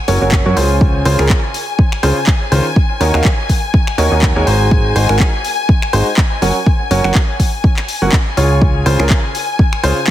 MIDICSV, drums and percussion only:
0, 0, Header, 1, 2, 480
1, 0, Start_track
1, 0, Key_signature, -5, "major"
1, 0, Tempo, 487805
1, 798, Time_signature, 4, 2, 24, 8
1, 9943, End_track
2, 0, Start_track
2, 0, Title_t, "Drums"
2, 78, Note_on_c, 9, 46, 105
2, 176, Note_off_c, 9, 46, 0
2, 312, Note_on_c, 9, 39, 112
2, 318, Note_on_c, 9, 36, 112
2, 410, Note_off_c, 9, 39, 0
2, 416, Note_off_c, 9, 36, 0
2, 558, Note_on_c, 9, 46, 93
2, 656, Note_off_c, 9, 46, 0
2, 798, Note_on_c, 9, 36, 117
2, 896, Note_off_c, 9, 36, 0
2, 1037, Note_on_c, 9, 46, 102
2, 1136, Note_off_c, 9, 46, 0
2, 1171, Note_on_c, 9, 26, 76
2, 1269, Note_off_c, 9, 26, 0
2, 1272, Note_on_c, 9, 39, 105
2, 1278, Note_on_c, 9, 36, 113
2, 1370, Note_off_c, 9, 39, 0
2, 1376, Note_off_c, 9, 36, 0
2, 1518, Note_on_c, 9, 46, 89
2, 1617, Note_off_c, 9, 46, 0
2, 1758, Note_on_c, 9, 36, 114
2, 1856, Note_off_c, 9, 36, 0
2, 1892, Note_on_c, 9, 26, 75
2, 1990, Note_off_c, 9, 26, 0
2, 1998, Note_on_c, 9, 46, 104
2, 2097, Note_off_c, 9, 46, 0
2, 2232, Note_on_c, 9, 39, 109
2, 2238, Note_on_c, 9, 36, 111
2, 2330, Note_off_c, 9, 39, 0
2, 2337, Note_off_c, 9, 36, 0
2, 2478, Note_on_c, 9, 46, 87
2, 2576, Note_off_c, 9, 46, 0
2, 2718, Note_on_c, 9, 36, 108
2, 2817, Note_off_c, 9, 36, 0
2, 2958, Note_on_c, 9, 46, 94
2, 3057, Note_off_c, 9, 46, 0
2, 3091, Note_on_c, 9, 26, 76
2, 3190, Note_off_c, 9, 26, 0
2, 3193, Note_on_c, 9, 39, 102
2, 3198, Note_on_c, 9, 36, 109
2, 3291, Note_off_c, 9, 39, 0
2, 3297, Note_off_c, 9, 36, 0
2, 3438, Note_on_c, 9, 36, 58
2, 3439, Note_on_c, 9, 46, 90
2, 3537, Note_off_c, 9, 36, 0
2, 3537, Note_off_c, 9, 46, 0
2, 3678, Note_on_c, 9, 36, 117
2, 3777, Note_off_c, 9, 36, 0
2, 3812, Note_on_c, 9, 26, 77
2, 3910, Note_off_c, 9, 26, 0
2, 3919, Note_on_c, 9, 46, 100
2, 4017, Note_off_c, 9, 46, 0
2, 4152, Note_on_c, 9, 39, 109
2, 4158, Note_on_c, 9, 36, 106
2, 4250, Note_off_c, 9, 39, 0
2, 4257, Note_off_c, 9, 36, 0
2, 4398, Note_on_c, 9, 46, 84
2, 4497, Note_off_c, 9, 46, 0
2, 4638, Note_on_c, 9, 36, 108
2, 4737, Note_off_c, 9, 36, 0
2, 4878, Note_on_c, 9, 46, 94
2, 4977, Note_off_c, 9, 46, 0
2, 5011, Note_on_c, 9, 26, 81
2, 5110, Note_off_c, 9, 26, 0
2, 5112, Note_on_c, 9, 39, 104
2, 5118, Note_on_c, 9, 36, 109
2, 5210, Note_off_c, 9, 39, 0
2, 5216, Note_off_c, 9, 36, 0
2, 5357, Note_on_c, 9, 46, 84
2, 5456, Note_off_c, 9, 46, 0
2, 5598, Note_on_c, 9, 36, 111
2, 5696, Note_off_c, 9, 36, 0
2, 5731, Note_on_c, 9, 26, 80
2, 5829, Note_off_c, 9, 26, 0
2, 5837, Note_on_c, 9, 46, 97
2, 5935, Note_off_c, 9, 46, 0
2, 6072, Note_on_c, 9, 39, 113
2, 6078, Note_on_c, 9, 36, 112
2, 6170, Note_off_c, 9, 39, 0
2, 6176, Note_off_c, 9, 36, 0
2, 6318, Note_on_c, 9, 46, 83
2, 6416, Note_off_c, 9, 46, 0
2, 6558, Note_on_c, 9, 36, 106
2, 6656, Note_off_c, 9, 36, 0
2, 6798, Note_on_c, 9, 46, 98
2, 6896, Note_off_c, 9, 46, 0
2, 6931, Note_on_c, 9, 26, 80
2, 7030, Note_off_c, 9, 26, 0
2, 7032, Note_on_c, 9, 39, 109
2, 7038, Note_on_c, 9, 36, 110
2, 7130, Note_off_c, 9, 39, 0
2, 7136, Note_off_c, 9, 36, 0
2, 7278, Note_on_c, 9, 36, 61
2, 7278, Note_on_c, 9, 46, 90
2, 7376, Note_off_c, 9, 36, 0
2, 7377, Note_off_c, 9, 46, 0
2, 7518, Note_on_c, 9, 36, 110
2, 7616, Note_off_c, 9, 36, 0
2, 7646, Note_on_c, 9, 39, 35
2, 7652, Note_on_c, 9, 26, 79
2, 7744, Note_off_c, 9, 39, 0
2, 7750, Note_off_c, 9, 26, 0
2, 7758, Note_on_c, 9, 46, 101
2, 7857, Note_off_c, 9, 46, 0
2, 7993, Note_on_c, 9, 39, 118
2, 7998, Note_on_c, 9, 36, 106
2, 8091, Note_off_c, 9, 39, 0
2, 8096, Note_off_c, 9, 36, 0
2, 8239, Note_on_c, 9, 46, 87
2, 8337, Note_off_c, 9, 46, 0
2, 8478, Note_on_c, 9, 36, 115
2, 8576, Note_off_c, 9, 36, 0
2, 8718, Note_on_c, 9, 46, 99
2, 8816, Note_off_c, 9, 46, 0
2, 8851, Note_on_c, 9, 26, 76
2, 8950, Note_off_c, 9, 26, 0
2, 8952, Note_on_c, 9, 39, 117
2, 8958, Note_on_c, 9, 36, 109
2, 9051, Note_off_c, 9, 39, 0
2, 9056, Note_off_c, 9, 36, 0
2, 9198, Note_on_c, 9, 46, 88
2, 9297, Note_off_c, 9, 46, 0
2, 9438, Note_on_c, 9, 36, 116
2, 9537, Note_off_c, 9, 36, 0
2, 9571, Note_on_c, 9, 26, 73
2, 9670, Note_off_c, 9, 26, 0
2, 9678, Note_on_c, 9, 46, 107
2, 9777, Note_off_c, 9, 46, 0
2, 9912, Note_on_c, 9, 39, 119
2, 9943, Note_off_c, 9, 39, 0
2, 9943, End_track
0, 0, End_of_file